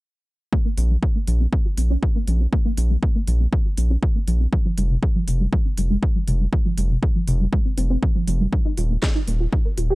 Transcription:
0.53 A#3, kick
0.65 A#3
0.78 A#1 C4, open hi-hat
0.90 F3
1.03 C#5, kick
1.15 A#3
1.27 A#1 F3, open hi-hat
1.40 C4
1.52 C#4, kick
1.65 F4
1.77 A#1 C4, open hi-hat
1.90 C#4
2.03 F4, kick
2.15 A#3
2.28 A#1 F3, open hi-hat
2.40 C4
2.53 A#3, kick
2.65 A#3
2.77 A#1 C4, open hi-hat
2.90 F3
3.03 C#5, kick
3.15 A#3
3.27 A#1 F3, open hi-hat
3.40 C4
3.53 C#4, kick
3.65 F4
3.77 A#1 C4, open hi-hat
3.90 C#4
4.03 F4, kick
4.15 A#3
4.27 A#1 F3, open hi-hat
4.40 C4
4.53 F3, kick
4.65 F3
4.78 F1 G3, open hi-hat
4.90 C3
5.03 G#4, kick
5.15 F3
5.28 F1 C3, open hi-hat
5.40 G3
5.53 G#3, kick
5.65 C4
5.78 F1 G3, open hi-hat
5.90 G#3
6.03 C4, kick
6.15 F3
6.28 F1 C3, open hi-hat
6.40 G3
6.53 F3, kick
6.65 F3
6.78 F1 G3, open hi-hat
6.90 C3
7.03 G#4, kick
7.15 F3
7.28 F1 C3, open hi-hat
7.40 G3
7.53 G#3, kick
7.65 C4
7.78 F1 C4, open hi-hat
7.90 C4
8.03 F3, kick
8.15 F3
8.27 F1 F3, open hi-hat
8.40 G3
8.53 D#4, kick
8.65 D#4
8.77 D#1 F4, open hi-hat
8.90 A#3
9.03 G5, kick, snare
9.15 D#4
9.28 D#1 A#3, open hi-hat
9.40 F4
9.52 G4, kick
9.65 A#4
9.78 D#1 F4, open hi-hat
9.90 G4

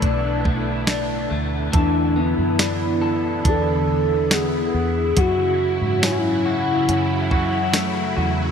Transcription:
Already playing: B2 A3 B3 D4 E4 A4
0.02 B1 D4, kick, closed hi-hat
0.44 A3, kick
0.87 D4, snare, closed hi-hat, tambourine
1.30 D2 A3
1.72 E2 D3 E3 B3 E4 A4, kick, closed hi-hat
1.76 D4
2.16 B3 E4
2.39 F#2
2.59 D4, snare, closed hi-hat, tambourine
3.01 A4
3.44 E2 D4, kick, closed hi-hat
3.49 A4
4.31 B3 G#4, snare, closed hi-hat, tambourine
4.74 E2
5.16 F#2 C#3 F#3 F#4, kick, closed hi-hat
5.82 G#2
6.02 C#4 E4, snare, closed hi-hat, tambourine
6.11 F#4
6.18 E4
6.46 F#4
6.89 F#2 C#4, closed hi-hat
7.31 F#4, kick
7.74 A3, snare, closed hi-hat, tambourine
8.16 E2 F#4

